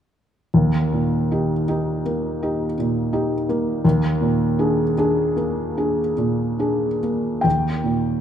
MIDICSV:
0, 0, Header, 1, 2, 480
1, 0, Start_track
1, 0, Key_signature, -3, "major"
1, 0, Tempo, 774194
1, 327, Time_signature, 9, 3, 24, 8
1, 802, Tempo, 727273
1, 2722, Tempo, 762389
1, 3202, Tempo, 790514
1, 3682, Tempo, 846262
1, 4642, Tempo, 795756
1, 5100, End_track
2, 0, Start_track
2, 0, Title_t, "Felt piano"
2, 0, Program_c, 0, 0
2, 334, Note_on_c, 0, 39, 45
2, 435, Control_c, 0, 64, 127
2, 576, Note_on_c, 0, 46, 36
2, 815, Note_on_c, 0, 63, 35
2, 818, Note_on_c, 0, 67, 37
2, 955, Note_off_c, 0, 46, 0
2, 1030, Note_off_c, 0, 63, 0
2, 1032, Note_off_c, 0, 67, 0
2, 1059, Note_on_c, 0, 63, 38
2, 1062, Note_on_c, 0, 67, 41
2, 1274, Note_off_c, 0, 63, 0
2, 1276, Note_off_c, 0, 67, 0
2, 1305, Note_on_c, 0, 58, 39
2, 1549, Note_on_c, 0, 63, 38
2, 1551, Note_on_c, 0, 67, 40
2, 1688, Note_off_c, 0, 58, 0
2, 1759, Note_off_c, 0, 63, 0
2, 1760, Note_off_c, 0, 67, 0
2, 1786, Note_on_c, 0, 46, 42
2, 2012, Note_on_c, 0, 63, 39
2, 2015, Note_on_c, 0, 67, 46
2, 2154, Note_off_c, 0, 46, 0
2, 2222, Note_off_c, 0, 63, 0
2, 2223, Note_off_c, 0, 67, 0
2, 2253, Note_on_c, 0, 58, 45
2, 2459, Note_off_c, 0, 39, 0
2, 2485, Note_off_c, 0, 58, 0
2, 2486, Note_on_c, 0, 39, 53
2, 2492, Control_c, 0, 64, 0
2, 2589, Control_c, 0, 64, 127
2, 2726, Note_on_c, 0, 46, 43
2, 2964, Note_on_c, 0, 62, 40
2, 2967, Note_on_c, 0, 68, 44
2, 3107, Note_off_c, 0, 46, 0
2, 3181, Note_off_c, 0, 62, 0
2, 3182, Note_off_c, 0, 68, 0
2, 3211, Note_on_c, 0, 62, 44
2, 3213, Note_on_c, 0, 68, 49
2, 3421, Note_off_c, 0, 62, 0
2, 3422, Note_off_c, 0, 68, 0
2, 3445, Note_on_c, 0, 58, 41
2, 3692, Note_on_c, 0, 62, 37
2, 3694, Note_on_c, 0, 68, 40
2, 3823, Note_off_c, 0, 58, 0
2, 3896, Note_off_c, 0, 62, 0
2, 3898, Note_off_c, 0, 68, 0
2, 3918, Note_on_c, 0, 46, 41
2, 4156, Note_on_c, 0, 62, 35
2, 4159, Note_on_c, 0, 68, 38
2, 4304, Note_off_c, 0, 46, 0
2, 4382, Note_off_c, 0, 62, 0
2, 4383, Note_off_c, 0, 68, 0
2, 4405, Note_on_c, 0, 58, 36
2, 4622, Note_off_c, 0, 39, 0
2, 4622, Note_on_c, 0, 79, 58
2, 4638, Note_on_c, 0, 39, 41
2, 4643, Note_off_c, 0, 58, 0
2, 4654, Control_c, 0, 64, 0
2, 4768, Control_c, 0, 64, 127
2, 4877, Note_on_c, 0, 46, 36
2, 5100, Note_off_c, 0, 39, 0
2, 5100, Note_off_c, 0, 46, 0
2, 5100, Note_off_c, 0, 79, 0
2, 5100, End_track
0, 0, End_of_file